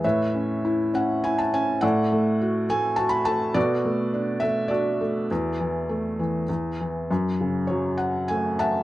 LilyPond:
<<
  \new Staff \with { instrumentName = "Felt piano" } { \time 3/4 \key a \major \tempo 4 = 102 <b' cis'' e''>4. fis''8 gis''16 a''16 gis''8 | <a' d'' fis''>4. gis''8 a''16 b''16 a''8 | <fis' a' d''>4. e''8 <fis' a' d''>4~ | <fis' a' d''>2 r4 |
\key fis \minor r4 cis''8 fis''8 gis''8 <e'' fis'' a''>8 | }
  \new Staff \with { instrumentName = "Felt piano" } { \time 3/4 \key a \major a,8 cis'8 e'8 cis'8 e'8 cis'8 | a,8 a8 fis'8 a8 fis'8 a8 | b,8 a8 d'8 a8 d'8 a8 | e,8 e8 a8 e8 e,8 e8 |
\key fis \minor fis,8 cis8 fis4 a4 | }
>>